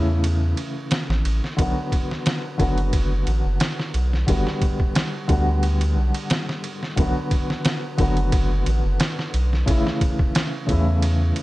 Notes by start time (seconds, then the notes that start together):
Already playing: E2 C#3 E3 A3 E4
0.24 ride
0.57 ride
0.91 snare, ride
1.09 A1, snare
1.25 A1, ride
1.44 snare
1.57 B1 D3 F#3 B3, kick, ride
1.62 F#4
1.92 kick, ride
2.11 snare
2.26 snare, ride
2.58 F#1 D3 F#3 B3, kick, ride
2.62 F#4
2.78 ride
2.93 kick, ride
3.27 A1, ride
3.44 F#1
3.60 snare, ride
3.80 snare
3.94 B1, ride
4.13 snare
4.27 G1 D3 G3 B3, kick, ride
4.32 F#4
4.47 snare
4.62 kick, ride
4.80 kick
4.95 snare, ride
5.28 D2 D3 G3 B3, kick, ride
5.33 F#4
5.63 ride
5.81 ride
5.96 B1
6.14 ride
6.30 snare, ride
6.49 snare
6.64 ride
6.83 snare
6.96 B1 D3 F#3 B3, kick, ride
7.01 F#4
7.31 kick, ride
7.50 snare
7.65 snare, ride
7.97 F#1 D3 F#3 B3, kick, ride
8.03 F#4
8.17 ride
8.32 kick, ride
8.66 A1, ride
8.84 F#1
9.00 snare, ride
9.19 snare
9.34 B1, ride
9.53 snare
9.66 A1 C#3 E3 A3, kick, ride
9.71 E4
9.87 snare
10.01 kick, ride
10.19 kick
10.35 snare, ride
10.67 E2 C#3 E3 A3, kick, ride
10.72 E4
11.02 ride
11.36 ride